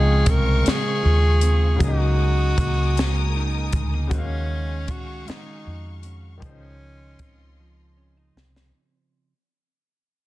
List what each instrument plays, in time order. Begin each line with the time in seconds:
Already playing: fingered electric bass C#2, clean electric guitar C#3 G#3 F4, grand piano F3 G#3 C4 D#4, string section C4 F5 C#6, tenor saxophone G#4
0.26 fingered electric bass C2, clean electric guitar C4, kick, closed hi-hat
0.30 tenor saxophone A#4
0.63 clean electric guitar G#3, muted fingered electric bass stroke, closed hi-hat
0.68 tenor saxophone G#4, snare
1.03 fingered electric bass D#2, clean electric guitar F4
1.41 clean electric guitar C4, closed hi-hat
1.76 grand piano C#3 F#3, string section A#4
1.80 fingered electric bass C#2, clean electric guitar C#3 D#4, grand piano G#3 A#3, string section G#5 D#6, kick, closed hi-hat
1.85 grand piano D#4, tenor saxophone F#4
2.19 clean electric guitar G#3
2.57 fingered electric bass C#2, clean electric guitar A#3, kick, closed hi-hat
2.97 clean electric guitar G#3, snare, closed hi-hat
3.36 clean electric guitar D#4
3.72 fingered electric bass D2, clean electric guitar G#3, kick, closed hi-hat
3.94 clean electric guitar A#3
4.07 grand piano C#3 F#4, clean electric guitar D#3, closed hi-hat
4.11 fingered electric bass D#2, grand piano G#3, tenor saxophone C#4, clean electric guitar F#4, string section F#4 G#4 F5 C#6, kick
4.15 grand piano A#3 F5
4.51 clean electric guitar G#3
4.87 fingered electric bass C#2, clean electric guitar C#4, tenor saxophone F#4, kick, closed hi-hat
5.25 clean electric guitar G#3, tenor saxophone D#4, muted fingered electric bass stroke, closed hi-hat
5.30 snare
5.64 fingered electric bass F2, clean electric guitar F#4
6.03 clean electric guitar C#4, closed hi-hat
6.38 grand piano D#3 F3
6.42 fingered electric bass C#2, clean electric guitar C#3 D#4, grand piano G#3, tenor saxophone C#4, string section F4 D#5 C6, kick, closed hi-hat
6.46 grand piano D#4 C5
6.82 clean electric guitar F3
7.19 fingered electric bass C#2, clean electric guitar C4, kick, closed hi-hat
7.60 clean electric guitar F3
7.97 clean electric guitar C#4
8.17 clean electric guitar D#4
8.36 fingered electric bass C2, clean electric guitar C4, snare
8.56 snare